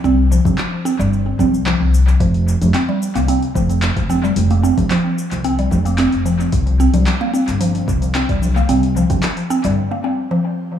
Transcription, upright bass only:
0.04 C2
0.45 C2
0.99 G1
1.39 C2
1.80 C2
2.20 F1
2.62 F1
3.15 C2
3.55 F1
3.97 F1
4.36 F1
4.77 F1
5.32 C2
5.71 F1
6.13 F1
6.53 C2
6.94 C2
7.48 G1
7.88 C2
8.29 C2
8.69 C2
9.10 C2
9.64 G1

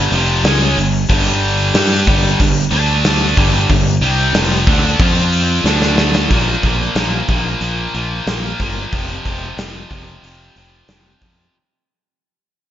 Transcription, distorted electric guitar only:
Already playing: G2 D3 G3
0.13 F2 C3 F3
0.46 C#3 G#3 C#4
0.77 G2 D3
1.09 G2 D3 G3
1.75 G3 D4 G4
2.07 G2 D3 G3
2.40 G2 D3
2.72 D3 A3 D4
3.37 G2 D3 G3
3.70 G2 D3
4.02 C3 G3 C4
4.35 F2 C3 F3
4.68 D3 A3 D4
5.01 F3 C4 F4
5.67 D3 A3 D4
6.32 A#2 F3 A#3
6.65 A#2 F3 A#3
6.97 A#2 F3 A#3
7.29 A#2 F3 A#3
7.62 A#2 F3 A#3
7.95 A#2 F3 A#3
8.28 A#2 F3 A#3
8.60 A#2 F3 A#3
8.93 F2 C3 F3
9.25 F2 C3 F3
9.58 F2 C3 F3
9.91 F2 C3 F3
10.24 F2 C3 F3
10.58 F2 C3 F3
10.90 F2 C3 F3
11.23 F2 C3 F3

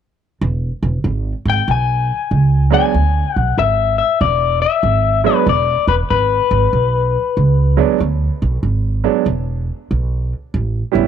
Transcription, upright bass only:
0.41 E1
0.83 E1
1.04 G#1
1.45 G#1
1.68 B1
2.31 C#2
2.94 D2
3.36 B1
3.58 G#1
4.21 E1
4.83 G#1
5.47 E1
5.87 E1
6.11 G#1
6.51 G#1
6.73 B1
7.37 C#2
8.00 D2
8.42 B1
8.63 G#1
9.26 E1
9.91 B1
10.54 A1
10.95 A1

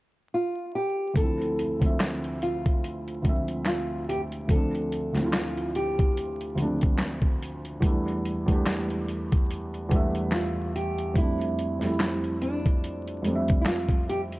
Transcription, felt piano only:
1.14 D2 F3 A3
1.19 C4 E4
1.79 D2 F3 A3
1.84 C4 E5
3.22 D2 F3 A3
3.27 C4 E5
4.48 D2 F3 A3
4.52 C4 D4
5.13 D2 F3 A3
5.18 C4 E4
5.26 F4
6.55 D2 F3 A3
6.60 C4 D4
7.80 E2 G3 A3
7.85 D4 E4
8.46 E2 G3 A3
8.51 D4 G4
9.89 E2 G3 A3
9.94 D4 E5
11.14 F2 G3 A3
11.19 C4 D4
11.79 F2 G3 A3
11.84 C4 E4
13.22 F2 G3 A3
13.27 C4 D4
13.35 E5

